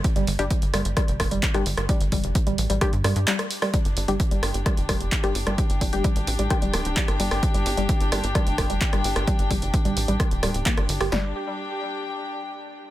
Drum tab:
HH |xxoxxxoxxxoxxxox|xxoxxxoxxxoxxxoo|xxoxxxoxxxoxxxox|xxoxxxoxxxoxxxoo|
CP |------------x---|------------x---|------------x---|------------x---|
SD |------r-r-r--r-r|--------r-r--r-r|------r-r-r--r-r|--------r-r--r-r|
BD |o---o---o-o-o---|o-o-o---o-------|o---o---o-o-o---|o-o-o---o---o---|

HH |xxoxxxoxxxoxxxox|xxoxxxoxxxoxxxoo|----------------|
CP |------------x---|------------x---|----------------|
SD |------r-r-r--r-r|--------r-r--r-r|o---------------|
BD |o---o---o-o-o---|o-o-o---o---o---|----------------|